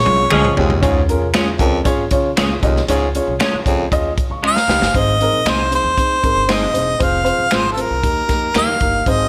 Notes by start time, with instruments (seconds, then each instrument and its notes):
Already playing: harmonica C#5
0.05 upright bass C2, upright piano G#3 C#4 F4 G#4 C#5, high tom
0.30 upright bass C#2, saxophone section F3 C#4 G#4, clean electric guitar G#3 C#4 F4 G#4, upright piano G#3 C#4 F4 G#4 D#5, finger snap, mid tom
0.44 mid tom
0.56 upright bass C2, baritone saxophone D#2, upright piano G#3 C#4 F4 G#4 C#5, floor tom
0.70 floor tom
0.81 upright bass C#2, baritone saxophone G#2, upright piano C#4 F4 G#4 C#5, kick, closed hi-hat
1.09 upright piano C#4 F4 G#4 A#4, closed hi-hat
1.22 upright bass C2
1.34 clean electric guitar G#3 C#4 F4 G#4, upright piano C#4 F4 G#4 C#5, finger snap, snare, closed hi-hat
1.47 muted upright bass stroke
1.59 upright bass C#2, baritone saxophone F2, upright piano C#4 F4 G#4 A#4, kick, closed hi-hat
1.84 upright bass G#1, upright piano C#4 F4 G#4 C#5, kick, closed hi-hat
2.11 upright bass C#3, upright piano C#4 F4 G#4 C#5, kick, closed hi-hat
2.37 upright bass C#2, clean electric guitar G#3 C#4 F4 G#4, upright piano C#4 F4 G#4 C#5, finger snap, snare, closed hi-hat
2.62 upright bass C2, baritone saxophone D#2, upright piano C#4 F4 G#4 D#5, kick, closed hi-hat
2.76 snare
2.88 upright bass C#2, baritone saxophone G#2, upright piano C#4 F4 G#4 C#5, closed hi-hat
3.15 upright piano C#4 F4 G#4 C#5, closed hi-hat
3.27 upright bass C2
3.39 clean electric guitar G#3 C#4 F4 G#4, upright piano C#4 F4 G#4 C#5, finger snap, snare, closed hi-hat
3.53 muted upright bass stroke
3.65 upright bass C#2, baritone saxophone F2, upright piano C#4 F4 G#4 C#5, kick, closed hi-hat
3.92 upright bass D#2, upright piano C#4 F4 G#4 D#5, kick, closed hi-hat
4.18 kick, closed hi-hat
4.30 upright bass C#2, upright piano F5 C#6
4.43 clean electric guitar G#3 C#4 F4 G#4, upright piano D#5 C6, finger snap
4.47 harmonica F5
4.55 upright piano C#5 A#5, snare
4.68 upright bass C#2, baritone saxophone D#2, snare
4.81 upright bass G1, upright piano C5 G#5, snare
4.94 upright bass G#1, upright piano C4 D#4 G#4 C5, harmonica D#5, kick, closed hi-hat
5.20 upright piano C4 D#4 G#4 A#4, closed hi-hat
5.32 upright bass A#1
5.45 upright bass C2, clean electric guitar G#3 C4 D#4 G#4, upright piano C4 D#4 G#4 D#5, finger snap, snare, closed hi-hat
5.50 harmonica C5
5.70 upright piano C4 D#4 G#4 C5, closed hi-hat
5.75 harmonica C5
5.84 upright bass D#2
5.97 upright piano C4 D#4 G#4 C5, kick, closed hi-hat
6.22 upright bass G#1, upright piano C4 D#4 G#4 A#4, kick, closed hi-hat
6.36 upright bass G1
6.48 clean electric guitar G#3 C4 D#4 G#4, upright piano C4 D#4 G#4 C5, finger snap, snare, closed hi-hat
6.52 harmonica D#5
6.73 upright bass E1, upright piano C4 D#4 G#4 C5, closed hi-hat
6.99 upright bass F1, upright piano C4 F4 G#4 C5, harmonica F5, kick, closed hi-hat
7.24 upright piano C4 F4 G#4 C5, closed hi-hat
7.39 upright bass F1
7.51 upright bass G#1, clean electric guitar G#3 C4 F4 G#4, upright piano C4 F4 G#4 C5, finger snap, snare, closed hi-hat
7.55 harmonica C5
7.72 upright piano C4 F4 G#4, harmonica A4
7.77 harmonica A#4, upright piano C5, closed hi-hat
7.90 upright bass C2
8.03 upright bass D#2, upright piano A#3 D#4 G4 A#4, kick, closed hi-hat
8.28 upright bass F2, upright piano A#3 D#4 G4 A#4, kick, snare, closed hi-hat
8.54 upright bass D#2, clean electric guitar G3 A#3 D#4 G4, upright piano A#3 D#4 G4 A#4, harmonica F5, finger snap, snare, closed hi-hat
8.80 upright bass G1, upright piano A#3 D#4 G4 A#4, kick, closed hi-hat
9.06 upright bass G#1, upright piano C4 D#4 G#4 C5, harmonica D#5, kick, closed hi-hat